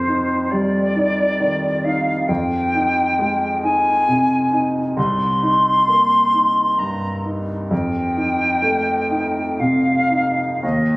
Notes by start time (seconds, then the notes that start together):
Already playing: F2 C5
0.08 D#4
0.51 G3 D5
0.95 D#4
1.40 D#3
1.84 D#4 F5
2.28 F2 G5
2.75 D#4
3.19 G#3
3.63 D#4 G#5
4.08 C3
4.52 D#4
4.97 C2 C6
5.43 D#4
5.88 A#3
6.34 D#4
6.79 G2 A#5
7.25 D#4
7.71 F2 G5
8.17 D#4
8.62 A3
9.10 D#4
9.60 C3 F5
10.10 D#4
10.63 D#2 D#5